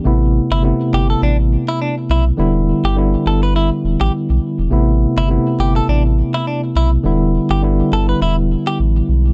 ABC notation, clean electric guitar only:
X:1
M:4/4
L:1/16
Q:"Swing 16ths" 1/4=103
K:Am
V:1 name="Clean electric guitar"
z3 E z2 G A D z2 E D z E z | z3 G z2 A B E z2 G z4 | z3 E z2 G A D z2 E D z E z | z3 G z2 A B E z2 G z4 |]